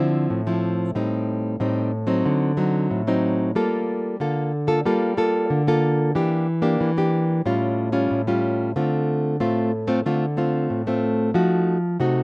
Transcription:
Already playing: D3 F3 C4 E4
0.30 A2
0.47 F3 C4 E4
0.95 A2 G3 C4 D#4
1.60 A2 G3 C4 D#4
2.07 F#3 C4 D#4
2.26 D3
2.57 F#3 C4 D#4
2.91 A2
3.07 F#3 C4 D#4
3.55 G3 A#3 F4 A4
4.20 D3 A#3 F4 A4
4.67 A#3 F4 A4
4.85 G3 A#3 F4 A4
5.17 A#3 F4 A4
5.50 D3
5.67 A#3 F4 A4
6.15 E3 A#3 D4 G4
6.62 A#3 D4 G4
6.81 E3
6.97 A#3 D4 G4
7.46 A2 G3 C#4 F4
7.92 G3 C#4 F4
8.11 A2
8.27 G3 C#4 F4
8.76 D3 A3 C4 F4
9.40 A2 A3 C4 F4
9.88 A3 C4 F4
10.06 D3 A3 C4 F4
10.37 A3 C4 F4
10.70 A2
10.87 A3 C4 F4
11.34 F3 A3 D#4 F#4
12.00 C3 A3 D#4 F#4

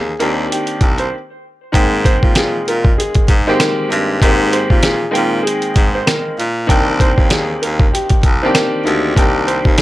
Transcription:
Already playing: D#2 G#4
0.19 D#2 D#3 A#3 C4 D4 G4 A#4, closed hi-hat
0.51 G4, closed hi-hat
0.67 closed hi-hat
0.81 C2, kick, closed hi-hat
0.98 C5, closed hi-hat
1.72 G#2 D#3 G#3 A#3 C4 G5, kick, closed hi-hat
2.05 C5, kick, closed hi-hat
2.23 A#2, kick
2.35 G#4, snare, closed hi-hat
2.68 A#2 A#4, closed hi-hat
2.85 kick
2.98 G#4, closed hi-hat
3.15 kick, closed hi-hat
3.28 G#2, kick, closed hi-hat
3.47 D#3 G#3 A#3 C4 G4 C5
3.60 A#4, snare, closed hi-hat
3.89 G2 D#3 G#3 A#3 C4 G4, closed hi-hat
4.22 G#2 D#3 G#3 A#3 C4 G4, kick, closed hi-hat
4.53 C5, closed hi-hat
4.70 A#2, kick
4.83 G#4, snare, closed hi-hat
5.11 D#3 G#3 A#3 C4 G5
5.15 A#2 A#4, closed hi-hat
5.43 G#4
5.47 closed hi-hat
5.62 closed hi-hat
5.76 G#2, kick, closed hi-hat
5.95 C5
6.07 A#4, snare, closed hi-hat
6.39 A#2, closed hi-hat
6.67 C2 D#3 A#3 C4 D4 G5, kick, closed hi-hat
7.00 C5, kick, closed hi-hat
7.18 D#2, kick
7.30 G#4, snare, closed hi-hat
7.62 D#2 A#4, closed hi-hat
7.80 kick
7.93 G4, closed hi-hat
8.09 kick, closed hi-hat
8.23 C2, kick, closed hi-hat
8.42 D#3 A#3 C4 D4 G4 C5
8.55 A#4, snare, closed hi-hat
8.84 D2 D#3 A#3 C4 D4 G4, closed hi-hat
9.16 C2 D#3 A#3 C4 D4 G4, kick, closed hi-hat
9.47 C5, closed hi-hat
9.65 D#2, kick
9.78 G#4, snare, closed hi-hat

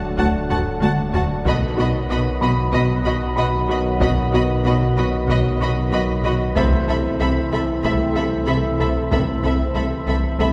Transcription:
Already playing: D1 D3 F#3 A3 D4 F#4 A4 D5
0.17 D2 D3 F#4 F#5 A5, taiko
0.49 D2 F#4 F#5 A5, taiko low-mid
0.81 D2 D3 A3 F#4 F#5 A5, taiko high
1.13 D2 F#4 F#5 A5, taiko low
1.45 B1 B2 D#3 F#3 B3 F#4 B4 D#5 B5, taiko
1.77 B1 B2 D#4 F#4 D#5 B5
2.09 B1 B2 F#4 D#5 B5
2.41 B1 B2 F#4 D#5 B5
2.72 B1 B2 B3 F#4 D#5 B5, taiko
3.05 B1 B2 F#4 D#5 B5
3.36 B1 B2 B3 F#4 D#5 B5
3.68 B1 B2 F#4 D#5 B5
4.00 B1 B2 B3 F#4 D#5 B5, taiko
4.32 B1 B2 D#4 F#4 D#5 B5
4.65 B1 B2 F#4 D#5 B5
4.96 B1 B2 F#4 D#5 B5
5.28 B1 B2 B3 F#4 D#5 B5, taiko
5.59 B1 B2 F#4 D#5 B5
5.91 B1 B2 B3 F#4 D#5 B5
6.24 B1 B2 F#4 D#5 B5
6.55 C2 C3 E3 A3 C4 E4 A4 C5 E5 B5, taiko
6.87 C2 C3 C4 A4 E5 B5
7.19 C2 C3 A4 E5 B5
7.51 C2 C3 A4 E5 B5
7.82 C2 C3 A3 A4 E5 B5, taiko
8.15 C2 C3 A4 E5 B5
8.47 C2 C3 E4 A4 E5 B5
8.79 C2 C3 A4 E5 B5
9.11 C2 C3 A3 A4 E5 B5, taiko
9.43 C2 C3 C4 A4 E5 B5
9.75 C2 C3 A4 E5 B5
10.06 C2 C3 A4 E5 B5
10.38 C2 C3 A3 A4 E5 B5, taiko

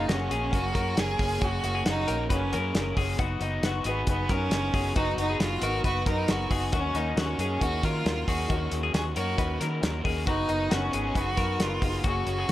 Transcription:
Already playing: A#3 C#4 D#4 F#4 G#4
0.08 F#1 F#3 A#3 C#4 F#4 G#4, snare, closed hi-hat
0.29 A#1 A#3 C#4 F#4 G#4, closed hi-hat
0.33 A#3
0.51 F#1 F#3 A#3 C#4 F#4 A#4, kick, closed hi-hat
0.55 G#4
0.72 F#2 A#3 C#4 F#4 G#4 A#4, kick, closed hi-hat
0.77 A#3
0.95 F#1 F#3 A#3 C#4 F#4 G#4, snare, closed hi-hat
0.99 G#4
1.18 F#1 A#3 C#4 F#4 G#4 A#4, kick, open hi-hat
1.40 F#1 F#3 A#3 C#4 F#4 G#4, kick, closed hi-hat
1.44 F#4
1.62 F#1 A#3 C#4 F#4 G#4, closed hi-hat
1.75 G#4
1.85 F#1 F#3 A#3 C#4 F#4 G#4 A#4, snare, closed hi-hat
1.89 D#4
2.07 A#1 A#3 C#4 F#4 G#4 A#4, closed hi-hat
2.29 F#1 F#3 A#3 C#4 F#4 G#4 B4, kick, closed hi-hat
2.52 F#2 A#3 C#4 F#4 G#4 A#4, closed hi-hat
2.74 F#1 F#3 A#3 C#4 F#4 G#4, snare, closed hi-hat
2.96 F#1 A#3 C#4 F#4 G#4, kick, open hi-hat
3.18 F#1 F#3 B3 D#4 F#4 B4, kick, closed hi-hat
3.40 F#1 B3 D#4 F#4 B4, closed hi-hat
3.63 F#1 F#3 B3 D#4 F#4 B4, snare, closed hi-hat
3.84 G#1 B3 D#4 F#4 G#4 B4, closed hi-hat
4.07 F#1 F#3 B3 D#4 F#4 B4, kick, closed hi-hat
4.29 F#2 B3 C#4 D#4 F#4 A#4 B4, kick, snare, closed hi-hat
4.51 F#1 F#3 B3 D#4 F#4 A#4, snare, closed hi-hat
4.73 F#1 B3 D#4 F#4 G#4 C#5, kick, open hi-hat
4.95 F#1 F#3 B3 D#4 F#4 B4, kick, closed hi-hat
5.17 F#1 B3 D#4 F#4 B4, closed hi-hat
5.30 G#4
5.40 F#1 F#3 B3 D#4 F4 F#4 G#4, snare, closed hi-hat
5.60 G#1 B3 D#4 F#4 A#4 B4, closed hi-hat
5.65 B3
5.84 F#1 F#3 B3 D#4 F#4 B4, kick, closed hi-hat
6.05 F#2 B3 D#4 F#4 A#4 B4, kick, snare, closed hi-hat
6.10 B3
6.27 F#1 F#3 B3 D#4 F#4 G#4, snare, closed hi-hat
6.49 F#1 B3 D#4 F#4 G#4 B4, kick, open hi-hat
6.53 B3
6.71 D#2 D#3 A#3 C#4 D#4 F#4 A#4, kick, closed hi-hat
6.75 C#4
6.94 D#2 C#4 D#4 F#4 A#4, closed hi-hat
6.98 A#3
7.15 D#2 D#3 A#3 C#4 D#4 F#4 A#4, snare, closed hi-hat
7.38 F#2 A#3 C#4 D#4 F#4 G#4 A#4, closed hi-hat
7.59 D#2 D#3 A#3 C#4 D#4 F#4 A#4, kick, closed hi-hat
7.63 F#4
7.82 D#3 C#4 D#4 F4 F#4 A#4 C#5, kick, snare, closed hi-hat
7.86 A#3
8.04 D#2 D#3 A#3 C#4 D#4 F#4 A#4, snare, closed hi-hat
8.27 D#2 A#3 C#4 D#4 F#4 G#4 A#4, kick, open hi-hat
8.49 D#2 D#3 A#3 C#4 D#4 F#4 A#4, kick, closed hi-hat
8.71 D#2 A#3 C#4 D#4 F#4 G#4, closed hi-hat
8.83 G#4
8.93 D#2 D#3 A#3 C#4 D#4 F#4 G#4 A#4, snare, closed hi-hat
9.15 F#2 C#4 D#4 F#4 A#4 C#5, closed hi-hat
9.19 A#3
9.37 D#2 D#3 A#3 C#4 D#4 F#4 A#4 B4, kick, closed hi-hat
9.60 D#3 A#3 C#4 D#4 F#4 A#4, snare, closed hi-hat
9.81 D#2 D#3 A#3 C#4 D#4 F#4 A#4, snare, closed hi-hat
10.04 D#2 A#3 C#4 D#4 F#4 G#4 A#4, kick, open hi-hat
10.25 F#1 F#3 B3 D#4 F#4 B4, kick, closed hi-hat
10.47 F#1 B3 D#4 F#4 A#4, closed hi-hat
10.69 F#1 F#3 B3 C#4 D#4 F#4 A#4, snare, closed hi-hat
10.92 G#1 B3 D#4 F#4 G#4, closed hi-hat
11.14 F#1 F#3 B3 D#4 F#4 B4, kick, closed hi-hat
11.18 F#4
11.36 F#2 B3 D#4 F#4 A#4 B4, kick, snare, closed hi-hat
11.58 F#1 F#3 B3 D#4 F4 F#4 B4, snare, closed hi-hat
11.80 F#1 B3 D#4 F#4 G#4 A#4, kick, open hi-hat
12.03 F#1 F#3 A#3 C#4 F#4 G#4, kick, closed hi-hat
12.07 F#4
12.25 F#1 A#3 C#4 F#4 G#4, closed hi-hat
12.38 G#4
12.47 F#1 F#3 A#3 C#4

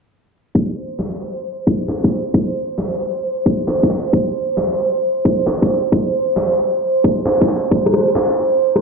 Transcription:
0.55 C5, kick
1.00 clap
1.67 kick
1.89 clap
2.04 kick
2.34 kick
2.79 clap
3.46 kick
3.68 clap
3.83 kick
3.91 clap
4.13 kick
4.58 clap
5.25 kick
5.47 clap
5.62 kick
5.92 kick
6.37 clap
7.04 kick
7.26 clap
7.41 kick
7.49 clap
7.71 C5, kick
7.86 cross-stick
7.94 cross-stick
8.16 clap
8.76 cross-stick

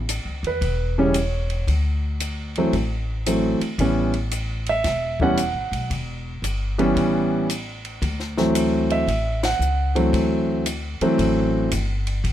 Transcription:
Already playing: A1
0.09 hi-hat pedal, ride
0.25 C#2
0.43 E2 B4, ride
0.61 E1, kick, ride
0.98 C#3 E3 G3 C#4 C#5
1.14 hi-hat pedal, ride
1.50 ride
1.67 D2, kick, ride
2.20 hi-hat pedal, ride
2.55 E3 F#3 A3 C4, ride
2.73 A1, kick, ride
3.26 E3 F#3 A3 C4, hi-hat pedal, ride
3.61 muted upright bass stroke, ride
3.78 A1 E3 G3 B3 C#4, kick, ride
4.13 ride
4.31 hi-hat pedal, ride
4.66 E5, ride
4.84 E1, kick, snare, ride
5.20 E3 G3 B3 C#4 F#5, kick
5.37 hi-hat pedal, ride
5.54 A1
5.72 B1, ride
5.90 E1, kick, ride
6.42 G1, hi-hat pedal, ride
6.78 E3 G3 B3 C#4, ride
6.96 A1, kick, ride
7.50 hi-hat pedal, ride
7.85 ride
8.02 D2, kick, ride
8.20 snare
8.37 E3 F#3 A3 C4, snare
8.55 hi-hat pedal, ride
8.90 E5, ride
9.07 A1, kick, ride
9.43 F#5, snare, ride
9.59 C#2, hi-hat pedal
9.95 E3 F#3 A3 C4, ride
10.13 D2, kick, ride
10.66 hi-hat pedal, ride
11.01 E3 F#3 A3 C4, muted upright bass stroke, ride
11.18 A1, kick, ride
11.71 G1, hi-hat pedal, ride
12.07 ride
12.24 A1, kick, ride

